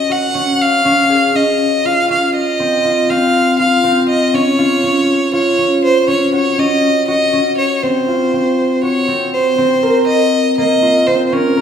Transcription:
0.00 0.34 C#4 medium
0.00 0.13 D#5 loud
0.10 1.91 F#4 medium
0.10 0.63 F#5 loud
0.35 0.85 C#4 medium
0.61 1.37 F5 loud
0.85 1.34 C#4 medium
1.10 3.37 G#4 medium
1.35 2.09 C#4 medium
1.35 1.87 D#5 medium
1.85 2.84 F4 medium
1.85 2.10 F5 medium
2.10 2.66 C#4 medium
2.10 2.33 F5 medium
2.35 3.11 D#5 loud
2.60 3.09 C4 medium
2.84 3.59 F4 medium
3.09 3.84 C4 medium
3.09 3.58 F5 loud
3.59 4.58 F4 medium
3.59 4.05 F5 medium
3.84 4.40 C4 medium
4.09 4.36 D#5 medium
4.34 4.83 C#4 medium
4.34 5.33 C#5 medium
4.59 5.33 F4 medium
4.83 5.58 C#4 medium
5.33 6.39 F4 medium
5.33 5.80 C#5 medium
5.58 6.07 C#4 medium
5.85 6.07 C5 medium
6.08 6.58 C#4 medium
6.08 6.33 C#5 medium
6.33 7.08 F#4 medium
6.33 6.60 C#5 medium
6.58 7.33 C#4 medium
6.58 7.07 D#5 medium
7.08 8.14 F#4 medium
7.08 7.55 D#5 loud
7.33 7.89 C#4 medium
7.58 7.84 C#5 medium
7.83 8.33 C4 medium
7.83 8.83 C5 medium
8.08 8.89 F4 medium
8.33 9.07 C4 medium
8.83 10.88 F#4 medium
8.83 9.30 C#5 medium
9.08 9.58 C4 medium
9.33 10.04 C5 medium
9.58 11.07 C4 medium
9.83 11.57 A#4 medium
10.07 10.54 D#5 loud
10.58 11.61 A#3 medium
10.58 11.08 D#5 loud
10.82 11.61 F4 medium
11.06 11.38 C4 medium
11.06 11.26 C5 medium
11.26 11.34 C5 medium
11.32 11.61 C#4 loud
11.32 11.61 A#4 loud
11.57 11.61 A#4 medium

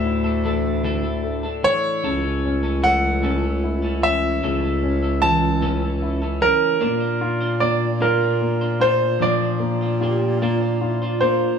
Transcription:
0.00 1.73 D2 loud
0.00 2.00 A2 medium
0.00 0.25 A3 soft
0.00 0.44 A3 medium
0.00 0.25 D4 soft
0.00 0.05 E4 medium
0.00 0.23 A4 soft
0.00 1.70 E5 medium
0.05 0.83 E4 medium
0.24 0.43 A3 soft
0.24 0.44 D4 soft
0.24 0.44 A4 medium
0.44 0.83 E3 medium
0.44 1.22 A3 medium
0.44 0.83 A3 medium
0.44 0.84 D4 medium
0.44 0.84 A4 medium
0.84 1.04 D3 medium
0.84 1.04 E3 medium
0.84 1.04 A3 medium
0.84 1.03 D4 medium
0.84 1.62 E4 medium
0.84 1.02 A4 medium
1.03 1.44 A3 soft
1.03 1.43 D4 medium
1.03 1.42 A4 medium
1.23 2.01 A3 soft
1.43 1.63 A3 soft
1.43 1.64 D4 soft
1.43 1.64 A4 medium
1.63 2.02 E3 medium
1.63 2.03 A3 medium
1.63 2.04 D4 medium
1.63 2.02 E4 soft
1.63 2.03 A4 medium
1.63 2.87 C#5 loud
2.03 4.39 C#2 loud
2.03 2.23 C#3 medium
2.03 4.38 C#3 medium
2.03 2.24 E3 medium
2.03 2.24 A3 medium
2.03 2.23 C#4 medium
2.03 2.21 A4 medium
2.23 2.64 A3 soft
2.23 2.63 C#4 soft
2.23 2.62 A4 medium
2.45 3.22 C#4 medium
2.63 2.82 A3 soft
2.63 2.82 C#4 soft
2.63 2.83 A4 soft
2.82 3.22 E3 medium
2.82 3.22 A3 medium
2.82 4.39 A3 soft
2.82 3.23 C#4 medium
2.82 3.23 A4 medium
2.82 4.07 F#5 loud
3.22 3.43 C#3 medium
3.22 3.43 E3 medium
3.22 3.43 A3 medium
3.22 4.03 C#4 medium
3.22 3.42 C#4 medium
3.22 3.41 A4 medium
3.42 3.83 A3 soft
3.42 3.82 C#4 soft
3.42 3.81 A4 soft
3.64 5.19 E4 medium
3.82 4.02 A3 soft
3.82 4.03 C#4 soft
3.82 4.03 A4 medium
4.02 4.42 E3 medium
4.02 4.42 A3 medium
4.02 4.43 C#4 medium
4.02 4.81 C#4 soft
4.02 4.43 A4 medium
4.02 5.26 E5 loud
4.43 6.55 C#2 loud
4.43 4.63 C#3 medium
4.43 6.79 C#3 medium
4.43 4.63 E3 medium
4.43 4.63 A3 medium
4.43 4.62 C#4 medium
4.43 4.61 A4 medium
4.62 5.03 A3 soft
4.62 5.03 C#4 soft
4.62 5.01 A4 medium
4.83 5.61 C#4 medium
5.03 5.21 A3 soft
5.03 5.22 C#4 soft
5.03 5.22 A4 medium
5.22 5.61 E3 medium
5.22 6.78 E3 medium
5.22 5.61 A3 medium
5.22 5.62 C#4 medium
5.22 5.62 A4 medium
5.22 6.45 A5 loud
5.61 5.82 C#3 medium
5.61 5.82 E3 medium
5.61 5.82 A3 medium
5.61 6.40 C#4 medium
5.61 5.81 C#4 medium
5.61 5.80 A4 medium
5.81 6.23 A3 soft
5.81 6.22 C#4 soft
5.81 6.21 A4 soft
6.02 6.79 E4 medium
6.22 6.43 A3 soft
6.22 6.42 C#4 soft
6.22 6.42 A4 soft
6.41 6.80 E3 medium
6.41 6.80 C#4 medium
6.41 6.81 C#4 medium
6.41 7.65 A#4 medium
6.80 9.17 A#2 loud
6.80 7.01 A#3 medium
6.80 7.60 A#3 medium
6.80 7.01 D4 medium
6.80 7.00 F4 medium
6.80 6.99 C5 medium
7.00 7.41 D4 soft
7.00 7.41 F4 soft
7.00 7.39 C5 medium
7.21 8.00 F4 medium
7.41 7.61 D4 soft
7.41 7.61 F4 medium
7.41 7.61 C5 medium
7.60 7.99 A#3 medium
7.60 8.40 A#3 soft
7.60 8.00 D4 medium
7.60 8.00 F4 medium
7.60 8.01 C5 medium
7.60 8.02 D5 medium
8.00 8.21 A#3 medium
8.00 8.21 D4 medium
8.00 8.78 F4 medium
8.00 8.21 F4 medium
8.00 8.84 A#4 medium
8.00 8.20 C5 medium
8.21 8.62 D4 soft
8.21 8.61 F4 soft
8.21 8.60 C5 medium
8.41 9.58 A#3 soft
8.61 8.80 D4 soft
8.61 8.81 F4 soft
8.61 8.81 C5 medium
8.80 9.20 A#3 medium
8.80 9.21 D4 medium
8.80 9.99 F4 medium
8.80 9.21 F4 medium
8.80 9.22 C5 loud
8.80 9.22 C5 medium
9.20 11.56 A#2 loud
9.20 11.56 F3 medium
9.20 9.41 A#3 medium
9.20 9.41 D4 medium
9.20 9.41 F4 medium
9.20 9.40 C5 medium
9.20 10.77 D5 medium
9.41 9.82 D4 soft
9.41 9.82 F4 soft
9.41 9.80 C5 soft
9.60 10.40 A#3 medium
9.81 10.01 D4 soft
9.81 10.02 F4 medium
9.81 10.01 C5 soft
10.01 10.41 A#3 medium
10.01 10.41 D4 medium
10.01 10.80 F4 soft
10.01 10.42 F4 medium
10.01 10.38 G4 medium
10.01 10.42 C5 medium
10.40 11.20 A#3 medium
10.40 10.61 A#3 medium
10.40 10.61 D4 medium
10.40 10.80 F4 medium
10.40 10.61 F4 medium
10.40 10.60 C5 medium
10.61 11.02 D4 soft
10.61 11.02 F4 medium
10.61 11.01 C5 medium
10.81 11.01 E4 medium
10.81 11.58 F4 medium
11.01 11.20 D4 soft
11.01 11.59 F4 medium
11.01 11.21 F4 medium
11.01 11.21 C5 medium
11.21 11.59 A#3 medium
11.21 11.59 A#3 soft
11.21 11.59 D4 medium
11.21 11.59 F4 medium
11.21 11.59 C5 medium

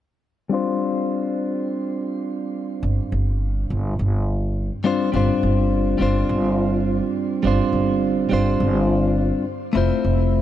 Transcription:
0.49 4.79 G3 medium
0.49 4.79 C4 medium
0.49 4.80 D4 medium
0.49 4.81 F4 medium
0.54 4.81 C5 medium
2.83 2.97 G1 medium
3.12 3.67 G1 medium
3.70 3.95 G1 medium
3.99 4.69 G1 medium
4.84 5.09 G3 medium
4.84 5.09 C4 medium
4.84 5.09 D4 medium
4.84 5.10 F4 medium
4.84 5.10 C5 medium
5.12 5.28 G1 medium
5.12 5.97 G3 medium
5.12 5.97 C4 medium
5.12 5.98 D4 medium
5.12 5.98 F4 medium
5.16 5.99 C5 medium
5.43 5.97 G1 medium
5.98 6.25 G1 medium
5.98 7.41 G3 medium
5.98 7.41 C4 medium
5.98 7.42 D4 medium
5.98 7.42 F4 medium
6.02 7.43 C5 medium
6.29 6.99 G1 medium
7.43 7.58 G1 medium
7.43 8.28 G3 medium
7.43 8.28 C4 medium
7.43 8.29 D4 medium
7.43 8.29 F4 medium
7.47 8.30 C5 medium
7.73 8.28 G1 medium
8.29 8.56 G1 medium
8.29 9.44 G3 medium
8.29 9.45 C4 medium
8.29 9.45 D4 medium
8.29 9.46 F4 medium
8.33 9.46 C5 medium
8.60 9.30 G1 medium
9.73 9.89 F1 medium
9.73 10.42 A3 medium
9.73 10.42 C4 medium
9.73 10.42 E4 medium
9.73 10.42 F4 medium
9.77 10.42 C5 medium
10.04 10.42 F1 medium

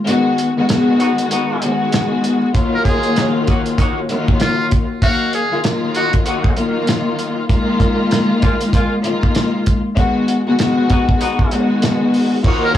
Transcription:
0.06 0.52 D#3 loud
0.06 0.52 G#3 medium
0.06 0.52 B3 loud
0.06 0.52 F#4 loud
0.06 closed hi-hat medium
0.38 closed hi-hat medium
0.57 0.68 D#3 medium
0.57 0.68 G#3 medium
0.57 0.68 B3 medium
0.57 0.69 F#4 loud
0.69 1.56 D#3 loud
0.69 1.56 G#3 medium
0.69 1.56 B3 medium
0.69 1.56 F#4 loud
0.69 cross-stick loud
0.69 snare loud
0.69 closed hi-hat medium
1.00 1.12 B3 medium
1.00 1.12 D#4 loud
1.00 1.12 F#4 loud
1.00 closed hi-hat medium
1.18 closed hi-hat medium
1.31 1.73 B3 loud
1.31 1.73 D#4 loud
1.31 1.73 F#4 loud
1.31 closed hi-hat loud
1.62 2.49 D#3 medium
1.62 2.49 G#3 medium
1.62 2.49 B3 medium
1.62 2.49 F#4 loud
1.62 closed hi-hat medium
1.92 cross-stick medium
1.92 snare loud
1.92 closed hi-hat loud
2.24 closed hi-hat medium
2.53 3.98 D#3 loud
2.53 3.99 F#3 loud
2.53 3.99 A#3 medium
2.53 3.99 F4 loud
2.53 kick loud
2.53 closed hi-hat medium
2.74 2.84 A#4 medium
2.85 3.32 G#4 medium
2.85 kick medium
2.85 closed hi-hat medium
3.03 closed hi-hat medium
3.16 cross-stick loud
3.16 snare loud
3.16 closed hi-hat loud
3.47 3.60 A#3 loud
3.47 3.60 D#4 medium
3.47 3.60 F#4 loud
3.47 kick medium
3.47 closed hi-hat medium
3.66 closed hi-hat medium
3.78 3.98 A#3 loud
3.78 3.98 D#4 medium
3.78 3.98 F#4 loud
3.78 kick medium
3.78 closed hi-hat loud
4.09 4.82 D#3 loud
4.09 4.82 F#3 medium
4.09 4.82 A#3 medium
4.09 4.82 F4 loud
4.09 closed hi-hat medium
4.28 kick medium
4.40 4.68 F4 medium
4.40 cross-stick medium
4.40 snare loud
4.40 closed hi-hat medium
4.71 kick medium
4.71 closed hi-hat medium
5.02 5.47 D#3 loud
5.02 5.47 F#3 medium
5.02 5.47 A#3 medium
5.02 5.30 F#4 loud
5.02 5.47 F5 loud
5.02 kick loud
5.02 closed hi-hat medium
5.33 5.62 G#4 medium
5.33 closed hi-hat medium
5.51 5.62 D#3 medium
5.51 5.62 F#3 medium
5.51 5.62 A#3 medium
5.51 5.63 F4 medium
5.63 6.50 D#3 loud
5.63 6.50 F#3 medium
5.63 6.51 A#3 medium
5.63 6.51 F4 loud
5.63 cross-stick medium
5.63 snare loud
5.63 closed hi-hat loud
5.95 6.07 A#3 medium
5.95 6.07 D#4 medium
5.95 6.12 F#4 medium
5.95 6.07 F#4 loud
5.95 closed hi-hat medium
6.13 kick medium
6.13 closed hi-hat medium
6.26 6.52 A#3 medium
6.26 6.52 D#4 medium
6.26 6.52 F#4 loud
6.26 closed hi-hat loud
6.44 kick medium
6.57 7.44 D#3 loud
6.57 7.44 F#3 medium
6.57 7.44 A#3 loud
6.57 7.44 F4 loud
6.57 closed hi-hat medium
6.87 cross-stick medium
6.87 snare loud
6.87 closed hi-hat medium
7.19 closed hi-hat medium
7.49 8.94 D#3 loud
7.49 8.94 G#3 medium
7.49 8.94 A#3 loud
7.49 8.94 F4 loud
7.49 kick loud
7.49 closed hi-hat medium
7.80 kick medium
7.80 closed hi-hat medium
8.11 cross-stick loud
8.11 snare loud
8.11 closed hi-hat loud
8.42 8.54 G#3 medium
8.42 8.54 A#3 loud
8.42 8.54 F4 loud
8.42 kick medium
8.42 closed hi-hat medium
8.61 closed hi-hat medium
8.73 8.93 G#3 medium
8.73 8.93 A#3 medium
8.73 8.93 F4 loud
8.73 kick medium
8.73 closed hi-hat loud
9.03 9.77 D#3 medium
9.03 9.77 G#3 medium
9.03 9.77 A#3 medium
9.03 9.77 F4 loud
9.03 closed hi-hat medium
9.23 kick medium
9.35 cross-stick medium
9.35 snare loud
9.35 closed hi-hat loud
9.66 kick medium
9.66 closed hi-hat medium
9.95 10.41 D#3 loud
9.95 10.41 G#3 medium
9.95 10.42 B3 loud
9.95 10.42 F#4 loud
9.95 kick loud
9.95 closed hi-hat medium
10.28 closed hi-hat medium
10.47 10.58 D#3 medium
10.47 10.58 G#3 medium
10.47 10.58 B3 medium
10.47 10.58 F#4 loud
10.59 11.46 D#3 loud
10.59 11.46 G#3 medium
10.59 11.46 B3 medium
10.59 11.46 F#4 loud
10.59 cross-stick medium
10.59 snare loud
10.59 closed hi-hat loud
10.89 11.01 B3 loud
10.89 11.01 D#4 loud
10.89 11.01 F#4 loud
10.89 kick medium
10.89 closed hi-hat medium
11.09 kick medium
11.20 11.63 B3 loud
11.20 11.63 D#4 loud
11.20 11.63 F#4 loud
11.20 closed hi-hat loud
11.39 kick medium
11.51 12.39 D#3 medium
11.51 12.39 G#3 medium
11.51 12.39 B3 medium
11.51 12.39 F#4 loud
11.51 closed hi-hat medium
11.82 cross-stick medium
11.82 snare loud
11.82 closed hi-hat loud
12.14 open hi-hat soft
12.42 12.78 D#3 loud
12.42 12.78 F#3 loud
12.42 12.78 A#3 loud
12.42 12.64 A#3 loud
12.42 12.64 D#4 medium
12.42 12.78 F4 loud
12.42 12.64 F#4 loud
12.42 kick loud
12.42 crash loud
12.64 12.74 A#4 medium
12.74 12.78 G#4 loud

